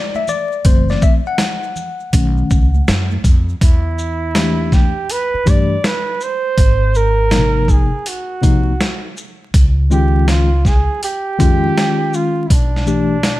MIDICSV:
0, 0, Header, 1, 6, 480
1, 0, Start_track
1, 0, Tempo, 740741
1, 422, Time_signature, 4, 2, 24, 8
1, 8682, End_track
2, 0, Start_track
2, 0, Title_t, "Flugelhorn"
2, 0, Program_c, 0, 56
2, 2349, Note_on_c, 0, 64, 97
2, 3068, Note_on_c, 0, 67, 94
2, 3078, Note_off_c, 0, 64, 0
2, 3314, Note_on_c, 0, 71, 111
2, 3324, Note_off_c, 0, 67, 0
2, 3558, Note_on_c, 0, 74, 110
2, 3567, Note_off_c, 0, 71, 0
2, 3795, Note_on_c, 0, 71, 93
2, 3805, Note_off_c, 0, 74, 0
2, 4037, Note_on_c, 0, 72, 108
2, 4047, Note_off_c, 0, 71, 0
2, 4514, Note_on_c, 0, 70, 109
2, 4524, Note_off_c, 0, 72, 0
2, 4994, Note_on_c, 0, 68, 88
2, 5003, Note_off_c, 0, 70, 0
2, 5234, Note_on_c, 0, 66, 81
2, 5244, Note_off_c, 0, 68, 0
2, 5948, Note_off_c, 0, 66, 0
2, 6431, Note_on_c, 0, 67, 104
2, 6650, Note_off_c, 0, 67, 0
2, 6672, Note_on_c, 0, 65, 93
2, 6912, Note_on_c, 0, 68, 93
2, 6922, Note_off_c, 0, 65, 0
2, 7147, Note_off_c, 0, 68, 0
2, 7155, Note_on_c, 0, 67, 119
2, 7874, Note_on_c, 0, 65, 97
2, 7884, Note_off_c, 0, 67, 0
2, 8078, Note_on_c, 0, 64, 57
2, 8088, Note_off_c, 0, 65, 0
2, 8113, Note_on_c, 0, 62, 96
2, 8122, Note_off_c, 0, 64, 0
2, 8682, Note_off_c, 0, 62, 0
2, 8682, End_track
3, 0, Start_track
3, 0, Title_t, "Tine electric piano"
3, 0, Program_c, 1, 4
3, 0, Note_on_c, 1, 74, 102
3, 103, Note_on_c, 1, 76, 105
3, 110, Note_off_c, 1, 74, 0
3, 186, Note_off_c, 1, 76, 0
3, 188, Note_on_c, 1, 74, 109
3, 421, Note_on_c, 1, 52, 52
3, 425, Note_on_c, 1, 57, 54
3, 427, Note_on_c, 1, 72, 94
3, 429, Note_on_c, 1, 60, 60
3, 432, Note_off_c, 1, 74, 0
3, 583, Note_on_c, 1, 74, 97
3, 587, Note_off_c, 1, 72, 0
3, 666, Note_off_c, 1, 74, 0
3, 667, Note_on_c, 1, 76, 106
3, 737, Note_off_c, 1, 76, 0
3, 769, Note_off_c, 1, 52, 0
3, 771, Note_off_c, 1, 57, 0
3, 773, Note_off_c, 1, 60, 0
3, 823, Note_on_c, 1, 78, 91
3, 1379, Note_on_c, 1, 51, 54
3, 1383, Note_on_c, 1, 57, 52
3, 1387, Note_on_c, 1, 61, 58
3, 1728, Note_off_c, 1, 51, 0
3, 1730, Note_off_c, 1, 57, 0
3, 1732, Note_off_c, 1, 61, 0
3, 1995, Note_off_c, 1, 78, 0
3, 2818, Note_on_c, 1, 52, 67
3, 2821, Note_on_c, 1, 57, 61
3, 2824, Note_on_c, 1, 62, 54
3, 2827, Note_on_c, 1, 67, 66
3, 3186, Note_off_c, 1, 52, 0
3, 3187, Note_off_c, 1, 57, 0
3, 3189, Note_off_c, 1, 62, 0
3, 3190, Note_off_c, 1, 67, 0
3, 3534, Note_on_c, 1, 52, 68
3, 3536, Note_on_c, 1, 57, 70
3, 3540, Note_on_c, 1, 62, 69
3, 3543, Note_on_c, 1, 67, 83
3, 3729, Note_off_c, 1, 52, 0
3, 3729, Note_off_c, 1, 57, 0
3, 3732, Note_off_c, 1, 62, 0
3, 3733, Note_off_c, 1, 67, 0
3, 4735, Note_on_c, 1, 46, 53
3, 4739, Note_on_c, 1, 53, 57
3, 4740, Note_on_c, 1, 58, 58
3, 4744, Note_on_c, 1, 63, 68
3, 4776, Note_on_c, 1, 48, 66
3, 4794, Note_off_c, 1, 46, 0
3, 5106, Note_off_c, 1, 53, 0
3, 5107, Note_off_c, 1, 58, 0
3, 5109, Note_off_c, 1, 63, 0
3, 5125, Note_off_c, 1, 48, 0
3, 5452, Note_on_c, 1, 48, 77
3, 5455, Note_on_c, 1, 53, 74
3, 5457, Note_on_c, 1, 58, 64
3, 5462, Note_on_c, 1, 63, 79
3, 5648, Note_off_c, 1, 48, 0
3, 5649, Note_off_c, 1, 53, 0
3, 5650, Note_off_c, 1, 58, 0
3, 5652, Note_off_c, 1, 63, 0
3, 6417, Note_on_c, 1, 51, 72
3, 6420, Note_on_c, 1, 56, 66
3, 6422, Note_on_c, 1, 61, 63
3, 6424, Note_on_c, 1, 65, 75
3, 6785, Note_off_c, 1, 51, 0
3, 6787, Note_off_c, 1, 56, 0
3, 6788, Note_off_c, 1, 61, 0
3, 6789, Note_off_c, 1, 65, 0
3, 7377, Note_on_c, 1, 51, 70
3, 7379, Note_on_c, 1, 56, 72
3, 7383, Note_on_c, 1, 61, 65
3, 7385, Note_on_c, 1, 65, 85
3, 8066, Note_off_c, 1, 51, 0
3, 8068, Note_off_c, 1, 56, 0
3, 8069, Note_off_c, 1, 61, 0
3, 8071, Note_off_c, 1, 65, 0
3, 8337, Note_on_c, 1, 52, 64
3, 8338, Note_on_c, 1, 57, 64
3, 8343, Note_on_c, 1, 62, 65
3, 8345, Note_on_c, 1, 67, 77
3, 8530, Note_off_c, 1, 52, 0
3, 8530, Note_off_c, 1, 57, 0
3, 8533, Note_off_c, 1, 62, 0
3, 8534, Note_off_c, 1, 67, 0
3, 8682, End_track
4, 0, Start_track
4, 0, Title_t, "Upright bass"
4, 0, Program_c, 2, 32
4, 421, Note_on_c, 2, 30, 111
4, 605, Note_off_c, 2, 30, 0
4, 1382, Note_on_c, 2, 35, 103
4, 1566, Note_off_c, 2, 35, 0
4, 1626, Note_on_c, 2, 37, 93
4, 1808, Note_off_c, 2, 37, 0
4, 1867, Note_on_c, 2, 42, 104
4, 2049, Note_off_c, 2, 42, 0
4, 2101, Note_on_c, 2, 41, 88
4, 2285, Note_off_c, 2, 41, 0
4, 2344, Note_on_c, 2, 40, 91
4, 3194, Note_off_c, 2, 40, 0
4, 3544, Note_on_c, 2, 43, 86
4, 3727, Note_off_c, 2, 43, 0
4, 4262, Note_on_c, 2, 32, 91
4, 5114, Note_off_c, 2, 32, 0
4, 5465, Note_on_c, 2, 36, 81
4, 5648, Note_off_c, 2, 36, 0
4, 6184, Note_on_c, 2, 37, 92
4, 7035, Note_off_c, 2, 37, 0
4, 7388, Note_on_c, 2, 41, 85
4, 7569, Note_off_c, 2, 41, 0
4, 8102, Note_on_c, 2, 35, 89
4, 8682, Note_off_c, 2, 35, 0
4, 8682, End_track
5, 0, Start_track
5, 0, Title_t, "Muted upright bass strokes"
5, 3461, Note_on_c, 9, 29, 53
5, 3525, Note_off_c, 9, 29, 0
5, 8682, End_track
6, 0, Start_track
6, 0, Title_t, "Drums"
6, 95, Note_on_c, 9, 63, 72
6, 95, Note_on_c, 9, 82, 60
6, 160, Note_off_c, 9, 63, 0
6, 160, Note_off_c, 9, 82, 0
6, 179, Note_on_c, 9, 64, 58
6, 179, Note_on_c, 9, 82, 41
6, 180, Note_off_c, 9, 82, 0
6, 180, Note_on_c, 9, 82, 55
6, 244, Note_off_c, 9, 64, 0
6, 245, Note_off_c, 9, 82, 0
6, 338, Note_on_c, 9, 82, 53
6, 403, Note_off_c, 9, 82, 0
6, 419, Note_on_c, 9, 42, 99
6, 420, Note_on_c, 9, 36, 127
6, 420, Note_on_c, 9, 82, 74
6, 483, Note_off_c, 9, 42, 0
6, 484, Note_off_c, 9, 82, 0
6, 485, Note_off_c, 9, 36, 0
6, 576, Note_on_c, 9, 82, 55
6, 588, Note_on_c, 9, 38, 35
6, 640, Note_off_c, 9, 82, 0
6, 652, Note_off_c, 9, 38, 0
6, 659, Note_on_c, 9, 82, 48
6, 662, Note_on_c, 9, 36, 98
6, 724, Note_off_c, 9, 82, 0
6, 727, Note_off_c, 9, 36, 0
6, 815, Note_on_c, 9, 82, 41
6, 880, Note_off_c, 9, 82, 0
6, 895, Note_on_c, 9, 38, 114
6, 900, Note_on_c, 9, 42, 80
6, 902, Note_on_c, 9, 64, 72
6, 902, Note_on_c, 9, 82, 64
6, 960, Note_off_c, 9, 38, 0
6, 965, Note_off_c, 9, 42, 0
6, 966, Note_off_c, 9, 64, 0
6, 966, Note_off_c, 9, 82, 0
6, 1059, Note_on_c, 9, 82, 52
6, 1124, Note_off_c, 9, 82, 0
6, 1139, Note_on_c, 9, 64, 59
6, 1139, Note_on_c, 9, 82, 37
6, 1141, Note_off_c, 9, 82, 0
6, 1141, Note_on_c, 9, 82, 44
6, 1204, Note_off_c, 9, 64, 0
6, 1206, Note_off_c, 9, 82, 0
6, 1295, Note_on_c, 9, 82, 42
6, 1359, Note_off_c, 9, 82, 0
6, 1381, Note_on_c, 9, 36, 104
6, 1381, Note_on_c, 9, 42, 118
6, 1445, Note_off_c, 9, 36, 0
6, 1445, Note_off_c, 9, 42, 0
6, 1539, Note_on_c, 9, 82, 46
6, 1604, Note_off_c, 9, 82, 0
6, 1622, Note_on_c, 9, 82, 52
6, 1623, Note_off_c, 9, 82, 0
6, 1623, Note_on_c, 9, 82, 51
6, 1625, Note_on_c, 9, 36, 96
6, 1688, Note_off_c, 9, 82, 0
6, 1689, Note_off_c, 9, 36, 0
6, 1779, Note_on_c, 9, 63, 73
6, 1779, Note_on_c, 9, 82, 49
6, 1844, Note_off_c, 9, 63, 0
6, 1844, Note_off_c, 9, 82, 0
6, 1862, Note_on_c, 9, 82, 70
6, 1866, Note_on_c, 9, 38, 127
6, 1867, Note_on_c, 9, 42, 68
6, 1927, Note_off_c, 9, 82, 0
6, 1931, Note_off_c, 9, 38, 0
6, 1932, Note_off_c, 9, 42, 0
6, 2015, Note_on_c, 9, 63, 73
6, 2015, Note_on_c, 9, 82, 56
6, 2079, Note_off_c, 9, 63, 0
6, 2079, Note_off_c, 9, 82, 0
6, 2100, Note_on_c, 9, 36, 102
6, 2101, Note_on_c, 9, 64, 63
6, 2101, Note_on_c, 9, 82, 40
6, 2103, Note_off_c, 9, 82, 0
6, 2103, Note_on_c, 9, 42, 52
6, 2103, Note_on_c, 9, 82, 46
6, 2165, Note_off_c, 9, 36, 0
6, 2166, Note_off_c, 9, 64, 0
6, 2168, Note_off_c, 9, 42, 0
6, 2168, Note_off_c, 9, 82, 0
6, 2262, Note_on_c, 9, 82, 46
6, 2327, Note_off_c, 9, 82, 0
6, 2342, Note_on_c, 9, 36, 113
6, 2344, Note_on_c, 9, 42, 94
6, 2407, Note_off_c, 9, 36, 0
6, 2409, Note_off_c, 9, 42, 0
6, 2583, Note_on_c, 9, 82, 38
6, 2648, Note_off_c, 9, 82, 0
6, 2818, Note_on_c, 9, 38, 115
6, 2824, Note_on_c, 9, 42, 79
6, 2883, Note_off_c, 9, 38, 0
6, 2888, Note_off_c, 9, 42, 0
6, 3059, Note_on_c, 9, 36, 84
6, 3062, Note_on_c, 9, 82, 38
6, 3064, Note_on_c, 9, 38, 33
6, 3124, Note_off_c, 9, 36, 0
6, 3127, Note_off_c, 9, 82, 0
6, 3129, Note_off_c, 9, 38, 0
6, 3302, Note_on_c, 9, 42, 102
6, 3366, Note_off_c, 9, 42, 0
6, 3544, Note_on_c, 9, 36, 98
6, 3544, Note_on_c, 9, 42, 47
6, 3544, Note_on_c, 9, 82, 53
6, 3609, Note_off_c, 9, 36, 0
6, 3609, Note_off_c, 9, 42, 0
6, 3609, Note_off_c, 9, 82, 0
6, 3786, Note_on_c, 9, 38, 114
6, 3787, Note_on_c, 9, 42, 64
6, 3850, Note_off_c, 9, 38, 0
6, 3852, Note_off_c, 9, 42, 0
6, 4022, Note_on_c, 9, 82, 47
6, 4087, Note_off_c, 9, 82, 0
6, 4261, Note_on_c, 9, 36, 118
6, 4261, Note_on_c, 9, 42, 93
6, 4326, Note_off_c, 9, 36, 0
6, 4326, Note_off_c, 9, 42, 0
6, 4502, Note_on_c, 9, 82, 41
6, 4567, Note_off_c, 9, 82, 0
6, 4739, Note_on_c, 9, 38, 96
6, 4744, Note_on_c, 9, 42, 73
6, 4804, Note_off_c, 9, 38, 0
6, 4809, Note_off_c, 9, 42, 0
6, 4978, Note_on_c, 9, 36, 77
6, 4982, Note_on_c, 9, 82, 41
6, 5043, Note_off_c, 9, 36, 0
6, 5047, Note_off_c, 9, 82, 0
6, 5222, Note_on_c, 9, 42, 96
6, 5287, Note_off_c, 9, 42, 0
6, 5463, Note_on_c, 9, 42, 49
6, 5463, Note_on_c, 9, 82, 47
6, 5464, Note_on_c, 9, 36, 88
6, 5528, Note_off_c, 9, 42, 0
6, 5528, Note_off_c, 9, 82, 0
6, 5529, Note_off_c, 9, 36, 0
6, 5706, Note_on_c, 9, 38, 97
6, 5707, Note_on_c, 9, 42, 54
6, 5771, Note_off_c, 9, 38, 0
6, 5772, Note_off_c, 9, 42, 0
6, 5943, Note_on_c, 9, 82, 44
6, 6008, Note_off_c, 9, 82, 0
6, 6182, Note_on_c, 9, 36, 109
6, 6182, Note_on_c, 9, 42, 95
6, 6247, Note_off_c, 9, 36, 0
6, 6247, Note_off_c, 9, 42, 0
6, 6422, Note_on_c, 9, 82, 46
6, 6487, Note_off_c, 9, 82, 0
6, 6660, Note_on_c, 9, 38, 99
6, 6666, Note_on_c, 9, 42, 67
6, 6725, Note_off_c, 9, 38, 0
6, 6731, Note_off_c, 9, 42, 0
6, 6901, Note_on_c, 9, 36, 86
6, 6907, Note_on_c, 9, 82, 38
6, 6909, Note_on_c, 9, 38, 30
6, 6966, Note_off_c, 9, 36, 0
6, 6972, Note_off_c, 9, 82, 0
6, 6974, Note_off_c, 9, 38, 0
6, 7146, Note_on_c, 9, 42, 97
6, 7210, Note_off_c, 9, 42, 0
6, 7386, Note_on_c, 9, 36, 95
6, 7387, Note_on_c, 9, 42, 49
6, 7387, Note_on_c, 9, 82, 47
6, 7451, Note_off_c, 9, 36, 0
6, 7452, Note_off_c, 9, 42, 0
6, 7452, Note_off_c, 9, 82, 0
6, 7630, Note_on_c, 9, 38, 99
6, 7631, Note_on_c, 9, 42, 53
6, 7695, Note_off_c, 9, 38, 0
6, 7696, Note_off_c, 9, 42, 0
6, 7863, Note_on_c, 9, 82, 46
6, 7928, Note_off_c, 9, 82, 0
6, 8102, Note_on_c, 9, 36, 109
6, 8103, Note_on_c, 9, 42, 103
6, 8167, Note_off_c, 9, 36, 0
6, 8168, Note_off_c, 9, 42, 0
6, 8271, Note_on_c, 9, 38, 33
6, 8336, Note_off_c, 9, 38, 0
6, 8339, Note_on_c, 9, 82, 42
6, 8404, Note_off_c, 9, 82, 0
6, 8575, Note_on_c, 9, 38, 104
6, 8580, Note_on_c, 9, 42, 75
6, 8640, Note_off_c, 9, 38, 0
6, 8645, Note_off_c, 9, 42, 0
6, 8682, End_track
0, 0, End_of_file